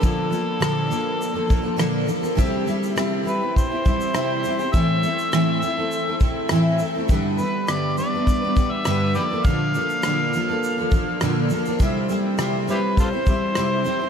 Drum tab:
SH |x-x-x-x-x-x-x-xx|x-xxx-x-x-xxx-xx|x-xxx-x-x-x-x-x-|x-x-x-x-x-x-x-x-|
SD |----r-------r---|----r-------r---|----r-------r---|----r-------r---|
BD |o---------o-----|o-------o-o-----|o---------o-----|o-------o-o-----|

SH |x-xxx-x-x-x-x-xx|x-x-x-x-x-x-x-x-|
SD |----r-------r---|----r-------r---|
BD |o---------o-----|o-------o-o-----|